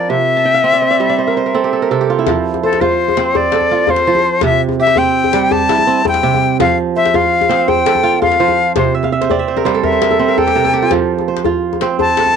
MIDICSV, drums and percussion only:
0, 0, Header, 1, 2, 480
1, 0, Start_track
1, 0, Key_signature, -1, "major"
1, 0, Tempo, 360794
1, 128, Time_signature, 12, 3, 24, 8
1, 16449, End_track
2, 0, Start_track
2, 0, Title_t, "Djembe"
2, 3014, Note_on_c, 9, 62, 70
2, 3014, Note_on_c, 9, 64, 72
2, 3147, Note_off_c, 9, 62, 0
2, 3147, Note_off_c, 9, 64, 0
2, 3381, Note_on_c, 9, 63, 49
2, 3514, Note_off_c, 9, 63, 0
2, 3628, Note_on_c, 9, 62, 51
2, 3742, Note_on_c, 9, 64, 61
2, 3761, Note_off_c, 9, 62, 0
2, 3875, Note_off_c, 9, 64, 0
2, 4104, Note_on_c, 9, 63, 53
2, 4218, Note_on_c, 9, 62, 61
2, 4237, Note_off_c, 9, 63, 0
2, 4351, Note_off_c, 9, 62, 0
2, 4457, Note_on_c, 9, 64, 63
2, 4590, Note_off_c, 9, 64, 0
2, 4682, Note_on_c, 9, 62, 62
2, 4798, Note_on_c, 9, 63, 49
2, 4815, Note_off_c, 9, 62, 0
2, 4931, Note_off_c, 9, 63, 0
2, 5042, Note_on_c, 9, 62, 21
2, 5152, Note_on_c, 9, 64, 65
2, 5175, Note_off_c, 9, 62, 0
2, 5272, Note_on_c, 9, 62, 51
2, 5285, Note_off_c, 9, 64, 0
2, 5395, Note_off_c, 9, 62, 0
2, 5395, Note_on_c, 9, 62, 21
2, 5520, Note_on_c, 9, 63, 52
2, 5528, Note_off_c, 9, 62, 0
2, 5635, Note_on_c, 9, 62, 21
2, 5654, Note_off_c, 9, 63, 0
2, 5768, Note_off_c, 9, 62, 0
2, 5871, Note_on_c, 9, 62, 73
2, 5871, Note_on_c, 9, 64, 70
2, 6004, Note_off_c, 9, 62, 0
2, 6004, Note_off_c, 9, 64, 0
2, 6235, Note_on_c, 9, 63, 53
2, 6368, Note_off_c, 9, 63, 0
2, 6476, Note_on_c, 9, 62, 55
2, 6595, Note_on_c, 9, 64, 64
2, 6609, Note_off_c, 9, 62, 0
2, 6728, Note_off_c, 9, 64, 0
2, 6972, Note_on_c, 9, 63, 60
2, 7091, Note_on_c, 9, 62, 71
2, 7105, Note_off_c, 9, 63, 0
2, 7224, Note_off_c, 9, 62, 0
2, 7331, Note_on_c, 9, 64, 76
2, 7464, Note_off_c, 9, 64, 0
2, 7573, Note_on_c, 9, 62, 74
2, 7697, Note_on_c, 9, 63, 55
2, 7706, Note_off_c, 9, 62, 0
2, 7830, Note_off_c, 9, 63, 0
2, 7942, Note_on_c, 9, 62, 25
2, 8051, Note_on_c, 9, 64, 76
2, 8075, Note_off_c, 9, 62, 0
2, 8167, Note_on_c, 9, 62, 59
2, 8184, Note_off_c, 9, 64, 0
2, 8300, Note_off_c, 9, 62, 0
2, 8431, Note_on_c, 9, 63, 58
2, 8553, Note_on_c, 9, 62, 24
2, 8564, Note_off_c, 9, 63, 0
2, 8686, Note_off_c, 9, 62, 0
2, 8781, Note_on_c, 9, 62, 83
2, 8781, Note_on_c, 9, 64, 77
2, 8914, Note_off_c, 9, 62, 0
2, 8914, Note_off_c, 9, 64, 0
2, 9386, Note_on_c, 9, 62, 57
2, 9501, Note_on_c, 9, 64, 68
2, 9519, Note_off_c, 9, 62, 0
2, 9634, Note_off_c, 9, 64, 0
2, 9862, Note_on_c, 9, 63, 62
2, 9987, Note_on_c, 9, 62, 69
2, 9995, Note_off_c, 9, 63, 0
2, 10120, Note_off_c, 9, 62, 0
2, 10221, Note_on_c, 9, 64, 69
2, 10354, Note_off_c, 9, 64, 0
2, 10461, Note_on_c, 9, 62, 75
2, 10578, Note_on_c, 9, 63, 55
2, 10594, Note_off_c, 9, 62, 0
2, 10711, Note_off_c, 9, 63, 0
2, 10824, Note_on_c, 9, 62, 23
2, 10940, Note_on_c, 9, 64, 70
2, 10957, Note_off_c, 9, 62, 0
2, 11064, Note_on_c, 9, 62, 52
2, 11073, Note_off_c, 9, 64, 0
2, 11197, Note_off_c, 9, 62, 0
2, 11284, Note_on_c, 9, 63, 50
2, 11417, Note_off_c, 9, 63, 0
2, 11417, Note_on_c, 9, 62, 21
2, 11551, Note_off_c, 9, 62, 0
2, 11650, Note_on_c, 9, 62, 67
2, 11650, Note_on_c, 9, 64, 72
2, 11783, Note_off_c, 9, 62, 0
2, 11783, Note_off_c, 9, 64, 0
2, 12012, Note_on_c, 9, 63, 51
2, 12145, Note_off_c, 9, 63, 0
2, 12262, Note_on_c, 9, 62, 51
2, 12368, Note_on_c, 9, 64, 64
2, 12395, Note_off_c, 9, 62, 0
2, 12501, Note_off_c, 9, 64, 0
2, 12727, Note_on_c, 9, 63, 55
2, 12856, Note_on_c, 9, 62, 65
2, 12860, Note_off_c, 9, 63, 0
2, 12979, Note_off_c, 9, 62, 0
2, 12979, Note_on_c, 9, 62, 20
2, 13085, Note_off_c, 9, 62, 0
2, 13085, Note_on_c, 9, 62, 20
2, 13085, Note_on_c, 9, 64, 60
2, 13218, Note_off_c, 9, 62, 0
2, 13218, Note_off_c, 9, 64, 0
2, 13327, Note_on_c, 9, 62, 72
2, 13446, Note_on_c, 9, 63, 51
2, 13460, Note_off_c, 9, 62, 0
2, 13579, Note_off_c, 9, 63, 0
2, 13698, Note_on_c, 9, 62, 21
2, 13807, Note_on_c, 9, 64, 68
2, 13831, Note_off_c, 9, 62, 0
2, 13937, Note_on_c, 9, 62, 52
2, 13940, Note_off_c, 9, 64, 0
2, 14070, Note_off_c, 9, 62, 0
2, 14168, Note_on_c, 9, 63, 52
2, 14301, Note_off_c, 9, 63, 0
2, 14512, Note_on_c, 9, 62, 73
2, 14512, Note_on_c, 9, 64, 66
2, 14645, Note_off_c, 9, 62, 0
2, 14645, Note_off_c, 9, 64, 0
2, 14880, Note_on_c, 9, 63, 51
2, 15013, Note_off_c, 9, 63, 0
2, 15120, Note_on_c, 9, 62, 50
2, 15227, Note_on_c, 9, 64, 63
2, 15253, Note_off_c, 9, 62, 0
2, 15360, Note_off_c, 9, 64, 0
2, 15603, Note_on_c, 9, 63, 52
2, 15712, Note_on_c, 9, 62, 62
2, 15736, Note_off_c, 9, 63, 0
2, 15845, Note_off_c, 9, 62, 0
2, 15952, Note_on_c, 9, 64, 62
2, 16085, Note_off_c, 9, 64, 0
2, 16194, Note_on_c, 9, 62, 66
2, 16316, Note_on_c, 9, 63, 47
2, 16327, Note_off_c, 9, 62, 0
2, 16449, Note_off_c, 9, 63, 0
2, 16449, End_track
0, 0, End_of_file